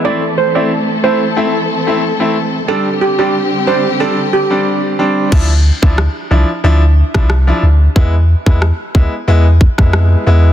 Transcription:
<<
  \new Staff \with { instrumentName = "Steel pan" } { \time 4/4 \key d \dorian \tempo 4 = 91 d''16 r16 c''16 d''16 r8 c''16 r2 r16 | a'16 r16 g'16 g'16 r8 c''16 r16 a'16 r16 g'16 r4 r16 | r1 | r1 | }
  \new Staff \with { instrumentName = "Grand piano" } { \time 4/4 \key d \dorian <a c' e'>16 r8 <a c' e'>16 r8 <a c' e'>16 r16 <a c' e'>16 r8 <a c' e'>16 r16 <a c' e'>16 r8 | <g c' d'>16 r8 <g c' d'>16 r8 <g c' d'>16 r16 <g c' d'>16 r8 <g c' d'>8. <g c' d'>8 | <f d' e'>16 r8 <f d' e'>16 r8 <f d' e'>16 r16 <f d' e'>16 r8 <f d' e'>16 r16 <f d' e'>16 r8 | <gis b e'>16 r8 <gis b e'>16 r8 <gis b e'>16 r16 <gis b e'>16 r8 <gis b e'>8. <gis b e'>8 | }
  \new Staff \with { instrumentName = "String section" } { \time 4/4 \key d \dorian <e a c' a'>1 | <d g c' g'>1 | r1 | r1 | }
  \new Staff \with { instrumentName = "Sub bass" } { \clef bass \time 4/4 \key d \dorian r1 | r1 | d,8. d,8 r16 c,16 r16 d,8. c,8. d,8 | e,8. e,8 r16 d,16 r16 e,8. f,8. e,8 | }
  \new DrumStaff \with { instrumentName = "Drums" } \drummode { \time 4/4 r4 r4 r4 r4 | r4 r4 r4 r4 | <cymc bd>8. bd16 ss4 r8. <bd ss>16 ss4 | bd8. bd16 ss8 bd8 r8 bd16 <bd ss>16 ss4 | }
>>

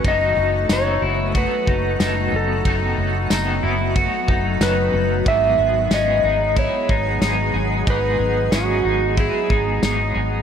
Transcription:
<<
  \new Staff \with { instrumentName = "Electric slide guitar" } { \time 4/4 \key b \mixolydian \tempo 4 = 92 dis''4 cis''4 b'4. a'8~ | a'4. r4. b'4 | e''4 dis''4 cis''2 | b'4 fis'4 gis'4. r8 | }
  \new Staff \with { instrumentName = "Clean electric guitar" } { \time 4/4 \key b \mixolydian dis'4 dis'8 e'8 fis'8 dis'8 dis'4 | dis'4 dis'8 e'8 fis'8 dis'8 dis'4 | dis4 cis'8 dis'8 e'8 dis'8 dis'4 | dis'4 cis'8 dis'8 e'8 dis'8 dis'4 | }
  \new Staff \with { instrumentName = "Clean electric guitar" } { \time 4/4 \key b \mixolydian <fis, dis fis b dis' a'>8 <fis b dis' a'>8 <fis, dis fis b dis' a'>8 <fis b dis' a'>8 <fis b dis' a'>8 <fis b dis' a'>8 <fis, dis fis b dis' a'>8 <dis' a'>8 | <fis, dis fis b dis' a'>8 <fis b dis' a'>8 <fis, dis fis b dis' a'>8 <fis b dis' a'>8 <b dis' a'>8 <fis b dis' a'>8 <fis, dis fis b dis' a'>8 <fis b dis' a'>8 | <gis, e gis b gis'>8 <gis b gis'>8 <gis, e gis b dis' gis'>8 <gis b dis' gis'>8 <gis b dis' gis'>8 <gis b dis' gis'>8 <gis, e gis b dis' gis'>8 <gis b dis' gis'>8 | <gis, e gis b dis' gis'>8 <gis b dis' gis'>8 <gis, e gis b dis' gis'>8 <gis b dis' gis'>8 <gis b dis' gis'>8 <gis b dis' gis'>8 <e gis b dis' gis'>8 <gis b dis' gis'>8 | }
  \new Staff \with { instrumentName = "Ambient pad" } { \time 4/4 \key b \mixolydian << { <a fis'>1~ | <a fis'>1 | <gis gis'>1~ | <gis gis'>1 | } \\ { <fis b>1~ | <fis b>1~ | <fis b>1~ | <fis b>1 | } >> }
  \new Staff \with { instrumentName = "Fingered electric bass" } { \clef bass \time 4/4 \key b \mixolydian fis,,8 fis,,8 fis,,8 fis,,8. r16 fis,,8 fis,,8 fis,,8 | fis,,8 fis,,8 fis,,8 fis,,8. r16 fis,,8 fis,,8 fis,,8 | gis,,8 gis,,8 gis,,8 gis,,8. r16 gis,,8 gis,,8 gis,,8 | gis,,8 gis,,8 gis,,8 gis,,8. r16 gis,,8 gis,,8 gis,,8 | }
  \new DrumStaff \with { instrumentName = "Drums" } \drummode { \time 4/4 <bd cymr>4 <cymr sn tamb>4 <bd cymr>8 bd8 <cymr sn tamb>4 | <bd cymr>4 <cymr sn tamb>4 <bd cymr>8 bd8 <cymr sn tamb>4 | <bd cymr>4 <cymr sn tamb>4 <bd cymr>8 bd8 <cymr sn tamb>4 | <bd cymr>4 <cymr sn tamb>4 <bd cymr>8 bd8 <cymr sn tamb>4 | }
>>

